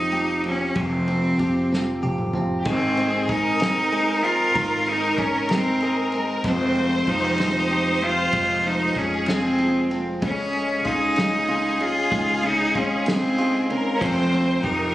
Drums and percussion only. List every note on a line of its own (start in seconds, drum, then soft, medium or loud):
0.12 ride soft
0.44 ride soft
0.75 kick loud
0.75 ride medium
1.08 ride soft
1.39 kick medium
1.39 ride soft
1.73 snare medium
2.03 high tom medium
2.18 mid tom medium
2.33 mid tom medium
2.65 kick loud
2.65 ride medium
2.97 ride soft
3.29 kick medium
3.29 ride soft
3.60 snare loud
3.60 ride medium
3.92 ride soft
4.24 ride soft
4.55 kick loud
4.55 ride medium
4.86 ride soft
5.18 kick medium
5.18 ride soft
5.49 snare loud
5.49 ride medium
5.80 ride soft
6.12 ride soft
6.44 kick loud
6.44 ride medium
6.75 ride soft
7.07 kick medium
7.07 ride soft
7.38 snare loud
7.38 ride medium
7.69 ride soft
8.01 ride soft
8.32 kick loud
8.32 ride medium
8.64 ride soft
8.95 kick medium
8.95 ride soft
9.26 snare loud
9.26 ride medium
9.58 ride soft
9.91 ride soft
10.22 kick loud
10.22 ride medium
10.53 ride soft
10.85 kick medium
10.85 ride soft
11.16 snare loud
11.16 ride medium
11.48 ride soft
11.80 ride soft
12.12 kick loud
12.12 ride medium
12.43 ride soft
12.75 kick medium
12.75 ride soft
13.06 snare medium
13.06 ride medium
13.38 ride soft
13.70 ride soft
14.01 kick loud
14.01 ride medium
14.33 ride soft
14.63 kick medium
14.63 ride soft